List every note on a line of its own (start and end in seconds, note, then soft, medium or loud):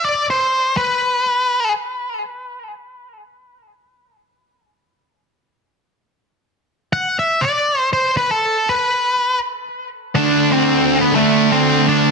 0.05 0.26 D5 medium
0.30 0.77 C5 medium
0.77 1.71 B4 medium
6.93 7.16 F#5 medium
7.19 7.44 E5 medium
7.41 7.88 D5 medium
7.93 8.17 C5 medium
8.17 8.29 B4 medium
8.31 8.68 A4 medium
8.69 9.38 B4 medium
10.15 11.11 D3 medium
10.15 11.13 A3 medium
10.15 10.50 D4 medium
10.15 11.14 D4 medium
10.15 10.49 D5 medium
10.52 10.98 C4 medium
10.52 10.98 C5 medium
11.01 11.13 B3 medium
11.01 11.13 B4 medium
11.12 12.10 D3 medium
11.12 12.11 A3 medium
11.12 11.49 A3 medium
11.12 12.11 D4 medium
11.12 11.49 A4 medium
11.52 11.86 C4 medium
11.52 11.86 C5 medium
11.88 12.11 D4 medium
11.88 12.11 D5 medium